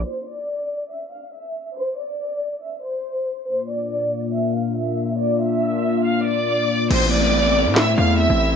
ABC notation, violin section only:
X:1
M:4/4
L:1/8
Q:1/4=140
K:Cmix
V:1 name="Violin section"
[cc'] [dd']3 [ee'] [ff'] [ee']2 | [cc'] [dd']3 [ee'] [cc']3 | [cc'] [dd']3 [ee'] [ff'] [ee']2 | [dd'] [ee']3 [ff'] [dd']3 |
[cc'] [dd']3 [ee'] [ff'] [ee']2 |]